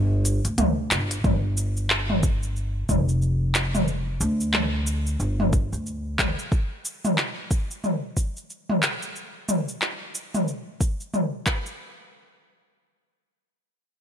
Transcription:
Already playing: G1
0.25 closed hi-hat, shaker
0.45 D2, closed hi-hat, shaker
0.58 D2, closed hi-hat, mid tom, shaker
0.91 G1, clap, closed hi-hat, shaker
1.11 closed hi-hat, shaker
1.24 G1, kick, mid tom, shaker
1.57 shaker
1.77 shaker
1.90 clap, shaker
2.10 mid tom
2.23 kick, shaker
2.43 shaker
2.56 shaker
2.89 F1, kick, mid tom, shaker
3.09 shaker
3.22 shaker
3.55 clap, shaker
3.75 mid tom, shaker
3.88 shaker
4.21 D2, shaker
4.40 shaker
4.54 clap, mid tom, shaker
4.87 shaker
5.07 shaker
5.20 G1, shaker
5.40 mid tom
5.53 kick, shaker
5.73 D2, shaker
5.86 shaker
6.19 kick, clap, mid tom, shaker
6.39 shaker
6.52 kick, shaker
6.85 shaker
7.05 mid tom, shaker
7.18 clap, shaker
7.51 kick, shaker
7.71 shaker
7.84 mid tom, shaker
8.17 kick, shaker
8.37 shaker
8.50 shaker
8.70 mid tom
8.83 clap, shaker
9.03 shaker
9.16 shaker
9.49 mid tom, shaker
9.68 shaker
9.82 clap, shaker
10.15 shaker
10.34 mid tom, shaker
10.48 shaker
10.81 kick, shaker
11.00 shaker
11.14 mid tom, shaker
11.46 kick, clap, shaker
11.66 shaker

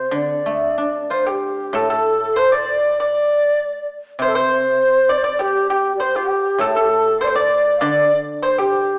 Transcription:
Already playing: C3 C5
0.11 D3 D5
0.46 A3
0.78 D4
1.10 F4 C5
1.26 G4
1.73 A2 A4
1.90 A4
2.18 G4
2.36 C5
2.52 D5
3.00 D5
4.19 C3 C5
4.28 A4
4.35 C5
5.09 D5
5.18 C5
5.24 D5
5.39 G4
5.70 G4
5.97 C5 D5
6.02 C5
6.16 G4
6.58 A2 A4
6.74 A4
6.81 G4
6.90 A4
7.21 C5 D5
7.27 C5
7.35 D5
7.78 D3 D5 F5
7.84 D5
8.42 C5
8.58 G4

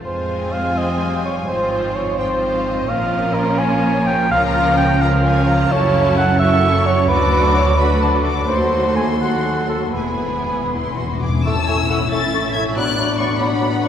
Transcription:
0.04 F1 F2 G#3 C4 F4 C5 G#5
0.53 F5
0.78 D#5
1.01 G3
1.25 C#5
1.47 G#1 G#2 F3 C4 F4 C5
1.71 C5
1.95 C#5
2.19 F3 C4 F4 C5 G5
2.43 F5
2.65 D#5
2.88 A#1 A#2 F3 C#4 F4 A#4 F5
3.34 A#4
3.59 C#5 G#5
4.07 G5
4.31 C#2 C#3 F3 C#4 F4 A#4 F5 A#5
4.54 F5
4.77 G5
5.01 F3 C#4 F4 A#4 F5 A#5
5.25 G#5
5.48 A#5
5.71 F#1 F#2 F#3 C#4 E4 A4 C#5 A5
6.17 F#5
6.39 F#3 C#4 E4 A4 E5 C#6
6.86 C#5
7.08 D2 F#3 D4 A4 B4 D6
7.12 F#4
7.32 B4
7.55 C#5
7.77 F#3 D4 F#4 A4 B4 B5
8.02 A5
8.26 D6
8.48 D#2 F#3 A3 F#4 A4 C5 C6
8.96 G#5
9.21 F#3 A3 F#4 A4 F#5
9.69 A4
9.93 E1 E2 B3 E4 G#4 B4 G#5
10.02 E2
10.11 E2
10.20 E2
10.28 E2
10.38 E2
10.45 E2
10.53 E2
10.61 E2
10.69 E2 E4 C6
10.78 E2
10.85 E2
10.94 E2 F#4
11.03 E2
11.12 E2
11.20 E2 G#4 D6
11.28 E2
11.36 E2
11.44 A1 A2 A3 C#4 E4 E5 A5 C#6 E6
11.67 A3 E5 G#5 C#6
11.89 A3 E5 F#5 C#6
12.11 A3 E5 C#6 A6
12.34 A3 E5 C#6
12.54 A3 E5 C#6 G#6
12.76 F#3 B3 D4 D5 B5 F#6
12.97 F#3 D5 B5
13.19 F#3 D5 B5 C#6
13.40 F#3 D5 F#5 B5
13.61 F#3 D5 B5
13.83 F#3 D5 B5 C#6

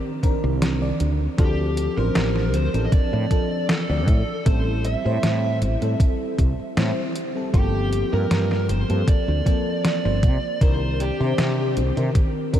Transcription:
Already playing: D#3 C4 D4 A#4
0.23 D#3 C4 D4 A#4, kick, closed hi-hat
0.44 C2
0.62 snare, closed hi-hat
0.80 D#3 C4 D4 D5
1.00 D2, closed hi-hat
1.37 D2 F3 C4 D4 G4 A4, kick, closed hi-hat
1.77 closed hi-hat
1.97 A1 F3 C4 D4 A#4 C5
2.15 A1, snare, closed hi-hat
2.36 snare
2.54 D2 C5, closed hi-hat
2.73 A1 F3 C4 D4 A4, closed hi-hat
2.86 D#5
2.92 D5, muted fretless electric bass stroke, kick, closed hi-hat
3.13 A2
3.30 F3 C4 D4 A4, kick, closed hi-hat
3.69 A4, snare, closed hi-hat
3.89 D2 F3 C4 D4 D5
4.08 A2, kick, closed hi-hat
4.45 A1 G3 C4 E4 A4 C5, kick, closed hi-hat
4.84 E5, closed hi-hat
5.04 A2 G3 C4 E4 C5
5.23 A2, snare, closed hi-hat
5.62 A1, closed hi-hat
5.81 A2 G3 C4 E4 A4, closed hi-hat
6.00 kick, closed hi-hat
6.38 C2, kick, closed hi-hat
6.59 muted fretless electric bass stroke
6.76 A2 G3 C4 E4 C5, snare, closed hi-hat
7.16 closed hi-hat
7.35 G3 C4 E4 A4
7.53 G1 F3 A#3 C4 G4 A4, kick, closed hi-hat
7.93 closed hi-hat
8.12 G2 F3 A#3 C4 A#4
8.31 G2, snare, closed hi-hat
8.51 snare
8.69 G1 C5, closed hi-hat
8.89 G2 F3 A#3 C4 A4, closed hi-hat
9.07 D5, muted fretless electric bass stroke, kick, closed hi-hat
9.28 D2
9.45 F3 A#3 C4 A4, kick, closed hi-hat
9.85 D5, snare, closed hi-hat
10.04 G1 F3 A#3 C4 C5
10.23 C3, kick, closed hi-hat
10.61 C2 D#3 C4 D4 A#4 C5, kick, closed hi-hat
11.00 G4, closed hi-hat
11.19 C3 D#3 C4 D4 C5
11.38 C3, snare, closed hi-hat
11.77 C2, closed hi-hat
11.96 C3 D#3 C4 D4 A#4, closed hi-hat
12.15 kick, closed hi-hat
12.52 D#3 C4 D4 A#4, kick, closed hi-hat

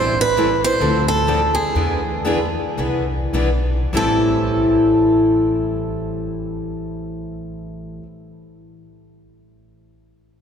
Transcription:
Already playing: A1 E3 G3 C4 E4 A4 C5
0.21 B4
0.37 E3 G3 C4 E4 A4
0.64 C5
0.80 D2 D3 F3 C4 D4 A4
1.08 A4
1.27 D3 F3 C4 D4 A4
1.55 G#4
1.74 E2 E3 B3 D4 G#4 B4
2.26 E3 B3 D4 G#4 B4
2.77 C2 E3 B3 D4 G#4 B4
3.33 B1 E3 B3 D4 G#4 B4
3.93 A1 A2 E3 G3 C4
3.97 E4 A4

